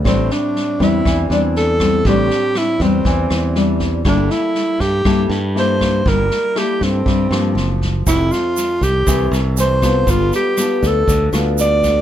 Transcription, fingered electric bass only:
X:1
M:4/4
L:1/8
Q:1/4=120
K:Am
V:1 name="Fingered electric bass" clef=bass
A,,, z2 E,, E,, E,,3 | A,,, z2 E,, E,, E,,3 | G,,, z2 G,, G,, G,,3 | G,,, z2 G,, G,, G,, ^F,,,2 |
F,,, z2 C,, C,, C,,3 | G,,, z2 D,, D,, D,,3 |]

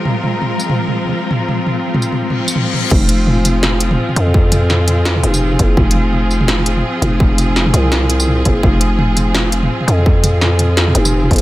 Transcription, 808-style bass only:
X:1
M:4/4
L:1/8
Q:"Swing 16ths" 1/4=168
K:Fm
V:1 name="808-style bass" clef=bass
z8 | z8 | F,,,6 z F,,- | F,,4- F,, F,,,2 _G,,, |
F,,,6 z F,,,- | F,,,3 C,,4 _G,,, | F,,,6 z F,,- | F,,4- F,, F,,,2 _G,,, |]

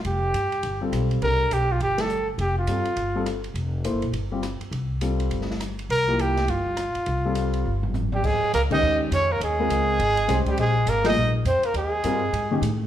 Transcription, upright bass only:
X:1
M:4/4
L:1/8
Q:"Swing" 1/4=205
K:Cmix
V:1 name="Upright bass" clef=bass
F,,,2 G,,2 G,,,2 =B,,,2 | C,,2 =B,,,2 G,,,4 | F,,,2 G,,2 G,,,4 | F,,,2- (3F,,, G,,, B,,, G,,,3 z |
C,,4 G,,,4 | C,,4 G,,,3 z | C,,4 G,,,4 | [K:Ebmix] E,, z D,,2 E,,2 F,,2 |
E,,2 D,,2 A,,,2 C,, z | B,,,2 A,,,2 B,,,2 F,, z | E,,2 G,,2 A,,2 =A,,2 |]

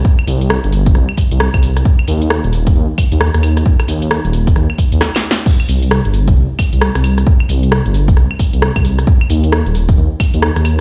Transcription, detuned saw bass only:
X:1
M:4/4
L:1/16
Q:"Swing 16ths" 1/4=133
K:Cm
V:1 name="Detuned saw bass" clef=bass
z2 C,,3 G,,,3 C,, z2 C,,2 C,,3 | z2 E,,3 E,,,3 E,, z2 E,,2 E,,3 | z2 E,,3 E,,,3 E,, z2 E,, z4 | z2 C,,3 G,,,3 C,, z2 C,,2 C,,3 |
z2 C,,3 G,,,3 C,, z2 C,,2 C,,3 | z2 E,,3 E,,,3 E,, z2 E,,2 E,,3 |]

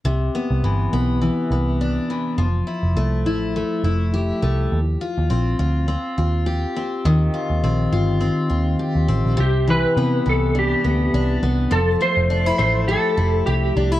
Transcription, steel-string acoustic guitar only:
X:1
M:4/4
L:1/16
Q:"Swing 16ths" 1/4=103
K:C
V:1 name="Steel-string acoustic guitar"
C,2 B,2 E,2 B,2 E,2 B,2 D2 E,2 | F,2 E2 A,2 E2 A,2 E2 G2 A,2 | z2 F2 C2 F2 C2 F2 G2 C2 | _E,2 F2 C2 F2 C2 F2 G2 C2 |
C,2 E,2 B,2 E,2 D2 B,2 D2 B,2 | F,2 A,2 D E A,2 G2 E2 G2 D E |]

